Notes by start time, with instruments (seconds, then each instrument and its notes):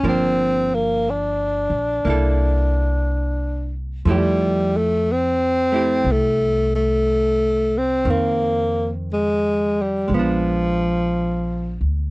0.03 upright bass G1, hollow-body jazz guitar F3 A#3 D4
0.08 tenor saxophone C4
0.75 tenor saxophone A#3
1.10 tenor saxophone D4
1.70 upright bass A#1
2.05 upright bass C2, hollow-body jazz guitar A#3 E4
2.10 hollow-body jazz guitar A4
4.05 upright bass F2, hollow-body jazz guitar F3 A3 E4
4.10 tenor saxophone G3, hollow-body jazz guitar G4
4.77 tenor saxophone A3
5.12 tenor saxophone C4
5.72 hollow-body jazz guitar A3 E4 G4
6.04 upright bass C2
6.12 tenor saxophone A3
6.76 tenor saxophone A3
7.78 tenor saxophone C4
8.05 upright bass F2, hollow-body jazz guitar D#3
8.10 tenor saxophone A#3, hollow-body jazz guitar C4
9.13 tenor saxophone G#3
9.81 tenor saxophone G3
10.08 upright bass A#1, hollow-body jazz guitar G#3
10.14 tenor saxophone F3, hollow-body jazz guitar B3
10.19 hollow-body jazz guitar D4
11.81 upright bass D2